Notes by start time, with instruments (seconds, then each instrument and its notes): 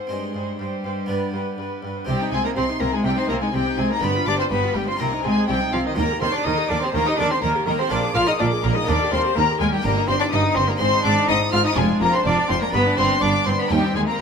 0.07 cello section G2, harpsichord G2 C4 D#4, cello G#3, violin section G#4 D#5, viola section C5
0.34 cello section G2, harpsichord G2, viola section C5, violin section D#5
0.59 cello section G2, harpsichord G2, cello G3, violin section G4 G5, viola section C5
0.84 cello section G2, harpsichord G2, viola section C5, violin section F5
0.97 violin section D#5
1.06 cello section G2, harpsichord G2 B3 D4, viola section B4, violin section D5
1.33 cello section G2, harpsichord G2, viola section B4, violin section C5
1.58 cello section G2, harpsichord G2, viola section B4, violin section B4
1.83 harpsichord G2, cello section G2, viola section B4, violin section D5
1.97 violin section C5
2.05 double bass section C2, cello section C3, harpsichord C3 C4 D#4, cello G3, viola section C4, violin section G4 G5
2.20 viola section D#4
2.32 double bass section C2, cello section C3, harpsichord C3, cello G#3, viola section C4, violin section G#4 G#5
2.44 cello A#3, viola section D#4, violin section A#4 A#5
2.56 double bass section C2, cello section C3, harpsichord C3, cello C4, viola section C4, violin section C5 C6
2.69 viola section D#4
2.80 double bass section C2, harpsichord C3, cello section C3, cello A#3, viola section C4, violin section A#4 A#5
2.93 cello G#3, viola section D#4, violin section G#4 G#5
3.05 double bass section C2, cello section C3, harpsichord C3, cello G3, viola section C4, violin section G4 G5
3.17 cello C4, viola section D#4, violin section C5 C6
3.29 double bass section C2, harpsichord C3, cello section C3, cello A#3, viola section C4, violin section A#4 A#5
3.42 cello G#3, viola section D#4, violin section G#4 G#5
3.54 double bass section C2, harpsichord C3, cello section C3, cello G3, viola section C4, violin section G4 G5
3.66 viola section D#4
3.78 double bass section C2, harpsichord C3, cello section C3, cello G#3, viola section C4, violin section G#4 G#5
3.90 cello A#3, viola section D#4, violin section A#4 A#5
3.99 double bass section G1, harpsichord G2 D4 F4, cello section G2, cello B3, viola section G4, violin section B4 B5
4.15 viola section F4
4.26 double bass section G1, harpsichord G2, cello section G2, cello D4, viola section G4, violin section D5 D6
4.38 cello C4, viola section F4, violin section C5 C6
4.50 double bass section G1, harpsichord G2, cello section G2, cello B3, viola section G4, violin section B4 B5
4.63 viola section F4
4.75 double bass section G1, harpsichord G2, cello section G2, cello G3, violin section G4 G5, viola section G4
4.87 cello C4, viola section F4, violin section C5 C6
4.97 double bass section C2, cello section C3, harpsichord C3 D#4 G4, cello A#3, viola section C4, violin section A#4 A#5
5.12 viola section D#4
5.24 double bass section C2, cello section C3, harpsichord C3, cello G#3, viola section C4, violin section G#4 G#5
5.36 viola section D#4
5.47 double bass section C2, cello section C3, harpsichord C3, cello G3, viola section C4, violin section G4 G5
5.60 viola section D#4
5.72 double bass section C2, harpsichord C3, cello section C3, cello F3, viola section C4, violin section F4 F5
5.85 cello D#3, viola section D#4, violin section D#4 D#5
5.95 double bass section D#2, cello section D#3, harpsichord D#3 D#4 G4, cello A#3, viola section A#4, violin section A#4 A#5
6.09 viola section G4
6.21 double bass section D#2, cello section D#3, harpsichord D#3, cello C4, viola section A#4, violin section C5 C6
6.33 cello D4, viola section G4, violin section D5 D6
6.45 double bass section D#2, cello section D#3, harpsichord D#3, cello D#4, viola section A#4, violin section D#5 D#6
6.58 viola section G4
6.69 double bass section D#2, cello section D#3, harpsichord D#3, cello D4, viola section A#4, violin section D5 D6
6.82 cello C4, viola section G4, violin section C5 C6
6.94 double bass section D#2, cello section D#3, harpsichord D#3, cello A#3, violin section A#4 A#5, viola section A#4
7.06 cello D#4, viola section G4, violin section D#5 D#6
7.18 double bass section D#2, cello section D#3, harpsichord D#3, cello D4, viola section A#4, violin section D5 D6
7.30 cello C4, viola section G4, violin section C5 C6
7.42 double bass section D#2, harpsichord D#3, cello section D#3, cello A#3, violin section A#4 A#5, viola section A#4
7.55 viola section G4
7.66 double bass section D#2, cello section D#3, harpsichord D#3, cello A#3, violin section A#4 A#5, viola section A#4
7.78 cello C4, viola section G4, violin section C5 C6
7.87 double bass section A#1, harpsichord A#3 F4 G#4, cello D4, violin section D5 D6
7.92 harpsichord A#2, cello section A#2, viola section A#4
8.03 viola section G#4
8.15 double bass section A#1, cello section A#2, harpsichord A#2, cello F4, viola section A#4, violin section F5 F6
8.27 cello D#4, viola section G#4, violin section D#5 D#6
8.39 double bass section A#1, cello section A#2, harpsichord A#2, cello D4, viola section A#4, violin section D5 D6
8.52 viola section G#4
8.63 double bass section A#1, cello section A#2, harpsichord A#2, cello A#3, violin section A#4 A#5, viola section A#4
8.75 cello D#4, viola section G#4, violin section D#5 D#6
8.84 harpsichord A#3 D#4 G4, cello D4, viola section A#4
8.88 harpsichord D#2, double bass section D#2, cello section D#2, violin section D5 D6
9.00 viola section G4
9.12 cello section D#2, harpsichord D#2, double bass section D#2, cello C4, viola section A#4, violin section C5 C6
9.24 viola section G4
9.35 cello section D#2, harpsichord D#2, double bass section D#2, cello A#3, viola section A#4, violin section A#4 A#5
9.48 viola section G4
9.59 harpsichord D#2, cello section D#2, double bass section D#2, cello G#3, violin section G#4 G#5, viola section A#4
9.71 cello G3, viola section G4, violin section G4 G5
9.80 harpsichord A#3 D#4 G4, cello A#3
9.84 double bass section G1, cello section G2, harpsichord G2, viola section G4, violin section A#4 A#5
9.96 viola section D#4
10.08 double bass section G1, cello section G2, harpsichord G2, cello C4, viola section G4, violin section C5 C6
10.20 cello D4, viola section D#4, violin section D5 D6
10.31 double bass section G1, cello section G2, harpsichord G2, cello D#4, viola section G4, violin section D#5 D#6
10.44 viola section D#4
10.55 double bass section G1, cello section G2, harpsichord G2, cello C4, viola section G4, violin section C5 C6
10.67 cello A#3, viola section D#4, violin section A#4 A#5
10.76 harpsichord G#3 D#4, cello C4, viola section C4
10.80 double bass section G#1, cello section G#2, harpsichord G#2, violin section C5 C6
10.93 viola section D#4
11.03 double bass section G#1, cello section G#2, harpsichord G#2, viola section C4, cello D4, violin section D5 D6
11.17 viola section D#4
11.28 double bass section G#1, cello section G#2, harpsichord G#2, viola section C4, cello D#4, violin section D#5 D#6
11.41 viola section D#4
11.52 double bass section G#1, cello section G#2, harpsichord G#2, viola section C4, cello F4, violin section F5 F6
11.64 cello D#4, viola section D#4, violin section D#5 D#6
11.73 harpsichord G#3 D4 F4, cello G#3, violin section G#4
11.77 double bass section F1, cello section F2, harpsichord F2, viola section F4, violin section G#5
11.89 viola section D4
12.01 double bass section F1, cello section F2, harpsichord F2, cello A#3, viola section F4, violin section A#4 A#5
12.12 cello C4, viola section D4, violin section C5 C6
12.24 double bass section F1, cello section F2, harpsichord F2, cello D4, viola section F4, violin section D5 D6
12.37 viola section D4
12.48 double bass section F1, cello section F2, harpsichord F2, cello C4, viola section F4, violin section C5 C6
12.61 cello A#3, viola section D4, violin section A#4 A#5
12.69 cello B3, harpsichord D4
12.73 double bass section G1, cello section G2, harpsichord G2, viola section B3, violin section B4 B5
12.86 viola section D4
12.98 double bass section G1, cello section G2, harpsichord G2, viola section B3, cello C4, violin section C5 C6
13.10 viola section D4
13.21 double bass section G1, cello section G2, harpsichord G2, viola section B3, cello D4, violin section D5 D6
13.34 viola section D4
13.46 double bass section G1, cello section G2, harpsichord G2, viola section B3, cello C4, violin section C5 C6
13.59 cello B3, viola section D4, violin section B4 B5
13.68 cello section D#2, double bass section D#2, harpsichord D#2 C4 D#4, cello G3, viola section D#4, violin section G4 G5
13.84 viola section C4
13.95 cello section D#2, double bass section D#2, harpsichord D#2, cello G#3, viola section D#4, violin section G#4 G#5
14.07 cello A#3, viola section C4, violin section A#4 A#5